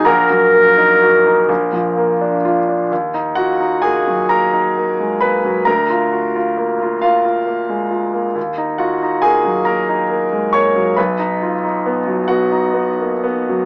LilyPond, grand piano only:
<<
  \new Staff \with { instrumentName = "Grand piano" } { \time 6/8 \key ees \minor \tempo 4. = 44 <bes' ges'' bes''>2~ <bes' ges'' bes''>8 r8 | r8 <ges' ges''>8 <aes' aes''>8 <bes' bes''>4 <ces'' ces'''>8 | <bes' bes''>4. <f' f''>4. | r8 <ges' ges''>8 <aes' aes''>8 <bes' bes''>4 <des'' des'''>8 |
<b' b''>4. <fis' fis''>4. | }
  \new Staff \with { instrumentName = "Grand piano" } { \time 6/8 \key ees \minor bes,,16 ges16 bes16 ees'16 ges'16 ees'16 bes,,16 f16 bes16 d'16 f'16 d'16 | ees,16 ees'16 f'16 ees'16 bes16 ges16 bes16 ees'16 bes16 aes16 bes16 ges16 | d,16 f'16 ges'16 f'16 bes16 f'16 bes16 f'16 bes16 aes16 f'16 bes16 | ees,16 ees'16 f'16 ees'16 bes16 ges16 bes16 ees'16 bes16 aes16 bes16 ges16 |
b,,16 dis'16 f'16 dis'16 b16 fis16 b16 dis'16 b16 bes16 b16 fis16 | }
>>